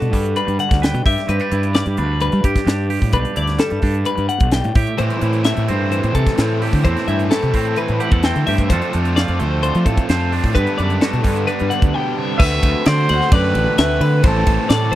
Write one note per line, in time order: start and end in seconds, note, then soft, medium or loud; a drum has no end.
0.00 1.04 G2 medium
0.00 0.13 B2 medium
0.00 0.36 D4 medium
0.00 1.03 F#4 medium
0.00 0.36 A4 medium
0.00 0.82 B4 medium
0.00 closed hi-hat soft
0.13 0.33 G2 medium
0.13 1.75 G3 medium
0.13 kick medium
0.13 open hi-hat medium
0.25 closed hi-hat soft
0.36 1.28 D4 soft
0.36 0.59 B4 medium
0.36 closed hi-hat medium
0.48 0.58 G2 medium
0.48 closed hi-hat soft
0.58 1.05 D3 medium
0.58 0.83 F#5 medium
0.58 closed hi-hat medium
0.71 0.91 D2 medium
0.71 kick medium
0.71 snare soft
0.71 closed hi-hat soft
0.82 1.05 B4 medium
0.82 1.06 G5 medium
0.82 snare loud
0.82 closed hi-hat medium
0.94 1.04 B2 medium
0.94 closed hi-hat soft
1.05 2.19 G2 medium
1.05 1.16 G2 medium
1.05 2.44 G4 medium
1.05 1.29 E5 medium
1.05 kick medium
1.05 open hi-hat medium
1.18 snare soft
1.18 closed hi-hat soft
1.28 1.39 G2 medium
1.28 1.40 C4 medium
1.28 1.75 B4 medium
1.28 closed hi-hat medium
1.40 1.97 D4 medium
1.40 closed hi-hat soft
1.52 1.82 G2 medium
1.52 3.17 E4 medium
1.52 closed hi-hat medium
1.63 closed hi-hat soft
1.74 3.58 G3 medium
1.74 1.98 D5 medium
1.74 snare loud
1.74 closed hi-hat medium
1.86 1.97 G2 medium
1.86 closed hi-hat soft
1.97 2.28 D2 medium
1.97 2.66 D4 medium
1.97 2.20 B4 medium
1.97 closed hi-hat medium
2.20 2.88 G2 medium
2.20 2.45 B4 medium
2.20 closed hi-hat medium
2.32 2.43 G3 medium
2.32 closed hi-hat soft
2.44 2.54 G2 medium
2.44 2.91 G4 medium
2.44 2.90 G4 medium
2.44 kick medium
2.44 closed hi-hat medium
2.56 kick medium
2.56 snare soft
2.56 closed hi-hat soft
2.66 2.97 G2 loud
2.66 2.88 D4 medium
2.66 snare loud
2.66 closed hi-hat medium
2.89 4.04 G2 medium
2.89 4.75 G4 medium
2.89 open hi-hat medium
3.02 3.12 A2 medium
3.02 kick medium
3.13 3.24 B1 medium
3.13 3.82 D4 medium
3.13 3.37 B4 medium
3.13 kick medium
3.13 closed hi-hat medium
3.25 closed hi-hat soft
3.36 3.57 D2 medium
3.36 5.22 E4 medium
3.36 3.60 D5 medium
3.36 closed hi-hat medium
3.47 snare soft
3.47 closed hi-hat soft
3.58 5.45 G3 medium
3.58 4.06 A4 medium
3.58 snare loud
3.58 closed hi-hat medium
3.70 3.82 G2 medium
3.70 closed hi-hat soft
3.82 4.03 G2 loud
3.82 4.73 D4 medium
3.82 kick medium
3.82 open hi-hat medium
3.94 closed hi-hat soft
4.05 4.51 G2 medium
4.05 4.28 B4 medium
4.05 closed hi-hat medium
4.18 4.28 G2 medium
4.18 closed hi-hat soft
4.29 4.52 F#5 medium
4.29 closed hi-hat medium
4.40 4.61 B1 medium
4.40 kick medium
4.40 closed hi-hat soft
4.51 4.75 G2 medium
4.51 4.75 G5 medium
4.51 snare loud
4.51 closed hi-hat medium
4.64 4.75 A2 medium
4.64 closed hi-hat soft
4.75 6.58 A2 medium
4.75 4.86 A2 medium
4.75 6.15 G4 medium
4.75 4.99 E5 medium
4.75 kick loud
4.75 open hi-hat medium
4.87 closed hi-hat soft
4.98 6.37 A2 medium
4.98 5.09 A2 medium
4.98 5.44 E3 medium
4.98 5.23 A3 medium
4.98 5.68 C4 medium
4.98 5.22 C4 loud
4.98 5.20 E4 medium
4.98 5.45 C5 medium
4.98 closed hi-hat medium
5.10 closed hi-hat soft
5.21 5.52 A2 medium
5.21 5.45 A3 soft
5.21 5.46 C4 soft
5.21 5.47 E4 medium
5.21 6.58 E4 medium
5.21 closed hi-hat medium
5.33 closed hi-hat soft
5.44 6.38 E3 medium
5.44 6.66 A3 medium
5.44 5.70 A3 medium
5.44 5.69 C4 medium
5.44 5.68 E4 medium
5.44 5.68 E5 medium
5.44 snare loud
5.44 closed hi-hat medium
5.57 5.67 A2 medium
5.57 closed hi-hat soft
5.68 5.99 G2 medium
5.68 6.38 A3 medium
5.68 6.39 C4 medium
5.68 6.39 C4 soft
5.68 6.39 E4 medium
5.68 5.91 C5 medium
5.68 closed hi-hat medium
5.91 6.58 E3 medium
5.91 6.15 C5 medium
5.91 closed hi-hat medium
6.03 6.14 A2 medium
6.03 closed hi-hat soft
6.15 6.25 C3 medium
6.15 6.61 A4 medium
6.15 6.62 A4 soft
6.15 kick medium
6.15 closed hi-hat medium
6.27 kick medium
6.27 snare soft
6.27 closed hi-hat soft
6.37 6.82 A2 medium
6.37 6.68 A2 loud
6.37 6.84 E3 medium
6.37 6.63 A3 medium
6.37 6.61 C4 medium
6.37 6.85 C4 medium
6.37 6.59 E4 medium
6.37 snare loud
6.37 closed hi-hat medium
6.60 8.44 A2 medium
6.60 6.85 A3 medium
6.60 6.85 C4 medium
6.60 6.85 E4 medium
6.60 7.99 G4 medium
6.60 open hi-hat medium
6.73 6.83 D3 medium
6.73 kick medium
6.83 6.95 E2 loud
6.83 7.30 A2 medium
6.83 7.29 E3 medium
6.83 7.09 A3 medium
6.83 7.54 C4 medium
6.83 7.08 C4 medium
6.83 7.06 E4 medium
6.83 7.07 C5 medium
6.83 kick medium
6.83 closed hi-hat medium
6.97 snare soft
6.97 closed hi-hat soft
7.07 7.28 G2 loud
7.07 7.31 A3 soft
7.07 7.31 C4 medium
7.07 7.31 E4 medium
7.07 8.44 E4 soft
7.07 7.31 E5 medium
7.07 closed hi-hat medium
7.19 closed hi-hat soft
7.30 7.76 E3 medium
7.30 7.56 A3 medium
7.30 8.44 A3 medium
7.30 7.54 C4 medium
7.30 7.52 E4 medium
7.30 7.77 A4 medium
7.30 snare loud
7.30 closed hi-hat medium
7.42 7.54 C3 medium
7.42 closed hi-hat soft
7.53 7.74 A2 medium
7.53 8.23 A3 medium
7.53 8.23 C4 medium
7.53 8.24 E4 medium
7.53 kick medium
7.53 open hi-hat medium
7.65 closed hi-hat soft
7.76 8.44 E3 medium
7.76 8.00 B4 medium
7.76 closed hi-hat medium
7.88 7.99 A2 medium
7.88 closed hi-hat soft
8.00 8.12 G4 medium
8.00 8.24 F#5 medium
8.00 closed hi-hat medium
8.11 8.32 E2 medium
8.11 8.46 A4 soft
8.11 kick medium
8.11 closed hi-hat soft
8.23 8.68 A2 medium
8.23 8.68 E3 medium
8.23 8.48 A3 medium
8.23 8.70 C4 medium
8.23 8.46 C4 medium
8.23 8.45 E4 medium
8.23 8.46 G5 medium
8.23 snare loud
8.23 closed hi-hat medium
8.36 8.45 D3 medium
8.36 closed hi-hat soft
8.46 8.72 G2 medium
8.46 8.67 A2 medium
8.46 8.69 A3 soft
8.46 8.69 C4 medium
8.46 8.68 E4 medium
8.46 8.70 G4 medium
8.46 8.70 E5 medium
8.46 open hi-hat medium
8.58 kick medium
8.58 closed hi-hat soft
8.69 8.80 F2 medium
8.69 9.15 F3 medium
8.69 9.86 F3 medium
8.69 8.94 A3 loud
8.69 9.38 A3 medium
8.69 8.93 C4 loud
8.69 8.93 D4 medium
8.69 8.91 F4 medium
8.69 9.16 F4 medium
8.69 10.09 A4 medium
8.69 9.16 C5 medium
8.69 kick medium
8.69 closed hi-hat medium
8.82 closed hi-hat soft
8.92 9.24 F2 medium
8.92 9.16 A3 soft
8.92 9.17 C4 medium
8.92 9.63 D4 medium
8.92 9.18 F4 medium
8.92 closed hi-hat medium
9.05 closed hi-hat soft
9.16 9.62 F3 medium
9.16 9.41 A3 medium
9.16 9.40 C4 medium
9.16 10.53 F4 medium
9.16 9.38 F4 medium
9.16 9.40 D5 medium
9.16 snare medium
9.16 closed hi-hat medium
9.28 9.38 F2 medium
9.28 closed hi-hat soft
9.39 9.70 D2 medium
9.39 10.52 A3 medium
9.39 10.09 A3 medium
9.39 10.10 C4 medium
9.39 10.11 F4 medium
9.39 9.62 C5 medium
9.39 closed hi-hat medium
9.63 10.32 D4 medium
9.63 9.86 C5 medium
9.63 closed hi-hat medium
9.75 9.85 F3 medium
9.75 closed hi-hat soft
9.85 9.96 A2 medium
9.85 10.53 F3 medium
9.85 10.32 A4 medium
9.85 kick medium
9.85 closed hi-hat medium
9.97 kick medium
9.97 closed hi-hat soft
10.09 10.39 F2 loud
10.09 10.54 F3 medium
10.09 10.34 A3 medium
10.09 10.32 C4 medium
10.09 10.31 F4 loud
10.09 10.53 C5 medium
10.09 snare loud
10.09 closed hi-hat medium
10.32 10.55 A3 medium
10.32 10.54 C4 medium
10.32 10.78 D4 medium
10.32 10.54 F4 medium
10.32 open hi-hat medium
10.44 10.54 A2 medium
10.44 kick medium
10.55 11.94 G2 medium
10.55 10.65 G2 loud
10.55 11.02 G2 medium
10.55 11.00 D3 medium
10.55 10.80 G3 medium
10.55 10.79 B3 medium
10.55 10.78 D4 medium
10.55 10.78 B4 medium
10.55 12.37 B4 medium
10.55 kick medium
10.55 closed hi-hat medium
10.67 closed hi-hat soft
10.78 10.99 F#2 medium
10.78 11.01 G3 soft
10.78 11.02 B3 medium
10.78 11.47 D4 soft
10.78 11.03 D4 medium
10.78 11.01 D5 medium
10.78 closed hi-hat medium
10.90 closed hi-hat soft
11.01 11.48 D3 medium
11.01 11.26 G3 medium
11.01 11.25 B3 medium
11.01 11.23 D4 medium
11.01 12.38 F#4 medium
11.01 11.47 A4 medium
11.01 snare loud
11.01 closed hi-hat medium
11.13 11.24 B2 medium
11.13 closed hi-hat soft
11.24 11.44 G2 loud
11.24 12.40 G3 medium
11.24 11.93 G3 medium
11.24 11.94 B3 medium
11.24 11.95 D4 medium
11.24 kick medium
11.24 open hi-hat medium
11.36 closed hi-hat soft
11.47 12.38 D4 medium
11.47 11.71 B4 medium
11.47 closed hi-hat medium
11.59 11.70 G2 medium
11.59 closed hi-hat soft
11.70 14.24 D3 medium
11.70 11.94 F#5 medium
11.70 closed hi-hat soft
11.82 11.92 D2 medium
11.82 kick medium
11.82 closed hi-hat soft
11.93 12.38 G2 medium
11.93 12.17 B2 medium
11.93 12.39 D3 medium
11.93 12.18 G3 medium
11.93 12.17 B3 medium
11.93 12.16 D4 medium
11.93 12.17 G5 medium
12.17 12.41 C3 medium
12.17 12.40 G3 medium
12.17 12.39 B3 medium
12.17 12.39 D4 medium
12.17 12.40 E5 medium
12.39 12.60 D2 loud
12.39 14.23 D3 medium
12.39 14.24 A3 medium
12.39 14.24 C4 medium
12.39 14.24 F#4 loud
12.39 12.86 B4 medium
12.39 12.89 E5 loud
12.39 kick loud
12.39 crash loud
12.63 12.73 D2 medium
12.63 kick medium
12.63 ride medium
12.86 13.06 D3 medium
12.86 13.36 C5 loud
12.86 13.09 D5 medium
12.86 snare loud
12.86 ride loud
13.09 13.20 D2 loud
13.09 13.32 F#5 medium
13.09 ride medium
13.21 snare soft
13.32 13.52 F#2 medium
13.32 13.79 B4 loud
13.32 13.78 D5 medium
13.32 kick loud
13.32 ride loud
13.55 13.65 A1 loud
13.55 ride medium
13.78 13.98 D2 medium
13.78 14.22 B4 medium
13.78 14.01 E5 medium
13.78 snare loud
13.78 ride loud
14.01 14.21 D3 loud
14.01 14.24 B4 medium
14.01 ride medium
14.23 14.44 A1 loud
14.23 14.95 A2 loud
14.23 14.95 E3 loud
14.23 14.95 A3 loud
14.23 14.95 C4 loud
14.23 14.95 E4 loud
14.23 14.68 A4 medium
14.23 14.70 C5 medium
14.23 kick loud
14.23 ride loud
14.47 14.57 A1 loud
14.47 kick medium
14.47 ride medium
14.69 14.90 A2 loud
14.69 14.95 A4 loud
14.69 14.93 D5 medium
14.69 snare loud
14.69 ride loud
14.92 14.95 C5 medium